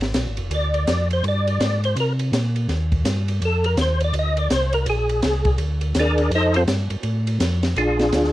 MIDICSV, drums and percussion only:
0, 0, Header, 1, 2, 480
1, 0, Start_track
1, 0, Tempo, 362538
1, 681, Time_signature, 4, 2, 24, 8
1, 11020, End_track
2, 0, Start_track
2, 0, Title_t, "Drums"
2, 13, Note_on_c, 9, 51, 54
2, 30, Note_on_c, 9, 38, 51
2, 145, Note_off_c, 9, 51, 0
2, 162, Note_off_c, 9, 38, 0
2, 188, Note_on_c, 9, 44, 61
2, 188, Note_on_c, 9, 51, 83
2, 192, Note_on_c, 9, 38, 77
2, 320, Note_off_c, 9, 44, 0
2, 320, Note_off_c, 9, 51, 0
2, 324, Note_off_c, 9, 38, 0
2, 490, Note_on_c, 9, 51, 51
2, 622, Note_off_c, 9, 51, 0
2, 675, Note_on_c, 9, 51, 67
2, 808, Note_off_c, 9, 51, 0
2, 980, Note_on_c, 9, 51, 49
2, 1112, Note_off_c, 9, 51, 0
2, 1158, Note_on_c, 9, 44, 58
2, 1158, Note_on_c, 9, 51, 81
2, 1162, Note_on_c, 9, 38, 73
2, 1290, Note_off_c, 9, 44, 0
2, 1290, Note_off_c, 9, 51, 0
2, 1294, Note_off_c, 9, 38, 0
2, 1463, Note_on_c, 9, 51, 53
2, 1596, Note_off_c, 9, 51, 0
2, 1641, Note_on_c, 9, 51, 63
2, 1774, Note_off_c, 9, 51, 0
2, 1951, Note_on_c, 9, 51, 50
2, 2084, Note_off_c, 9, 51, 0
2, 2124, Note_on_c, 9, 44, 60
2, 2124, Note_on_c, 9, 51, 80
2, 2128, Note_on_c, 9, 38, 81
2, 2257, Note_off_c, 9, 44, 0
2, 2257, Note_off_c, 9, 51, 0
2, 2261, Note_off_c, 9, 38, 0
2, 2430, Note_on_c, 9, 51, 54
2, 2563, Note_off_c, 9, 51, 0
2, 2601, Note_on_c, 9, 51, 69
2, 2734, Note_off_c, 9, 51, 0
2, 2904, Note_on_c, 9, 51, 56
2, 3036, Note_off_c, 9, 51, 0
2, 3087, Note_on_c, 9, 44, 58
2, 3087, Note_on_c, 9, 51, 82
2, 3091, Note_on_c, 9, 38, 78
2, 3220, Note_off_c, 9, 44, 0
2, 3220, Note_off_c, 9, 51, 0
2, 3224, Note_off_c, 9, 38, 0
2, 3386, Note_on_c, 9, 51, 49
2, 3518, Note_off_c, 9, 51, 0
2, 3561, Note_on_c, 9, 51, 59
2, 3565, Note_on_c, 9, 38, 38
2, 3694, Note_off_c, 9, 51, 0
2, 3698, Note_off_c, 9, 38, 0
2, 3865, Note_on_c, 9, 36, 61
2, 3865, Note_on_c, 9, 51, 52
2, 3997, Note_off_c, 9, 36, 0
2, 3997, Note_off_c, 9, 51, 0
2, 4039, Note_on_c, 9, 44, 61
2, 4039, Note_on_c, 9, 51, 80
2, 4043, Note_on_c, 9, 38, 81
2, 4172, Note_off_c, 9, 44, 0
2, 4172, Note_off_c, 9, 51, 0
2, 4176, Note_off_c, 9, 38, 0
2, 4344, Note_on_c, 9, 51, 58
2, 4477, Note_off_c, 9, 51, 0
2, 4524, Note_on_c, 9, 51, 65
2, 4656, Note_off_c, 9, 51, 0
2, 4820, Note_on_c, 9, 51, 54
2, 4952, Note_off_c, 9, 51, 0
2, 4994, Note_on_c, 9, 44, 58
2, 4994, Note_on_c, 9, 51, 72
2, 4998, Note_on_c, 9, 38, 79
2, 5127, Note_off_c, 9, 44, 0
2, 5127, Note_off_c, 9, 51, 0
2, 5131, Note_off_c, 9, 38, 0
2, 5300, Note_on_c, 9, 51, 54
2, 5432, Note_off_c, 9, 51, 0
2, 5473, Note_on_c, 9, 51, 68
2, 5606, Note_off_c, 9, 51, 0
2, 5781, Note_on_c, 9, 51, 56
2, 5913, Note_off_c, 9, 51, 0
2, 5961, Note_on_c, 9, 44, 61
2, 5961, Note_on_c, 9, 51, 83
2, 5965, Note_on_c, 9, 38, 83
2, 6093, Note_off_c, 9, 44, 0
2, 6093, Note_off_c, 9, 51, 0
2, 6097, Note_off_c, 9, 38, 0
2, 6257, Note_on_c, 9, 51, 57
2, 6390, Note_off_c, 9, 51, 0
2, 6436, Note_on_c, 9, 51, 67
2, 6568, Note_off_c, 9, 51, 0
2, 6743, Note_on_c, 9, 51, 53
2, 6875, Note_off_c, 9, 51, 0
2, 6917, Note_on_c, 9, 44, 57
2, 6917, Note_on_c, 9, 51, 84
2, 6921, Note_on_c, 9, 38, 78
2, 7050, Note_off_c, 9, 44, 0
2, 7050, Note_off_c, 9, 51, 0
2, 7054, Note_off_c, 9, 38, 0
2, 7213, Note_on_c, 9, 51, 54
2, 7219, Note_on_c, 9, 36, 63
2, 7345, Note_off_c, 9, 51, 0
2, 7351, Note_off_c, 9, 36, 0
2, 7389, Note_on_c, 9, 51, 64
2, 7521, Note_off_c, 9, 51, 0
2, 7693, Note_on_c, 9, 51, 53
2, 7825, Note_off_c, 9, 51, 0
2, 7873, Note_on_c, 9, 44, 74
2, 7873, Note_on_c, 9, 51, 88
2, 7877, Note_on_c, 9, 38, 79
2, 8006, Note_off_c, 9, 44, 0
2, 8006, Note_off_c, 9, 51, 0
2, 8010, Note_off_c, 9, 38, 0
2, 8179, Note_on_c, 9, 51, 57
2, 8311, Note_off_c, 9, 51, 0
2, 8361, Note_on_c, 9, 51, 68
2, 8493, Note_off_c, 9, 51, 0
2, 8660, Note_on_c, 9, 51, 54
2, 8793, Note_off_c, 9, 51, 0
2, 8840, Note_on_c, 9, 44, 64
2, 8840, Note_on_c, 9, 51, 84
2, 8844, Note_on_c, 9, 38, 87
2, 8972, Note_off_c, 9, 44, 0
2, 8972, Note_off_c, 9, 51, 0
2, 8976, Note_off_c, 9, 38, 0
2, 9139, Note_on_c, 9, 51, 54
2, 9271, Note_off_c, 9, 51, 0
2, 9309, Note_on_c, 9, 51, 62
2, 9442, Note_off_c, 9, 51, 0
2, 9626, Note_on_c, 9, 51, 56
2, 9758, Note_off_c, 9, 51, 0
2, 9800, Note_on_c, 9, 44, 60
2, 9800, Note_on_c, 9, 51, 85
2, 9804, Note_on_c, 9, 38, 87
2, 9933, Note_off_c, 9, 44, 0
2, 9933, Note_off_c, 9, 51, 0
2, 9937, Note_off_c, 9, 38, 0
2, 10100, Note_on_c, 9, 51, 57
2, 10104, Note_on_c, 9, 38, 64
2, 10232, Note_off_c, 9, 51, 0
2, 10236, Note_off_c, 9, 38, 0
2, 10277, Note_on_c, 9, 51, 53
2, 10410, Note_off_c, 9, 51, 0
2, 10583, Note_on_c, 9, 51, 45
2, 10587, Note_on_c, 9, 38, 55
2, 10715, Note_off_c, 9, 51, 0
2, 10719, Note_off_c, 9, 38, 0
2, 10757, Note_on_c, 9, 44, 63
2, 10757, Note_on_c, 9, 51, 71
2, 10761, Note_on_c, 9, 38, 67
2, 10889, Note_off_c, 9, 44, 0
2, 10889, Note_off_c, 9, 51, 0
2, 10893, Note_off_c, 9, 38, 0
2, 10915, Note_on_c, 9, 38, 28
2, 11020, Note_off_c, 9, 38, 0
2, 11020, End_track
0, 0, End_of_file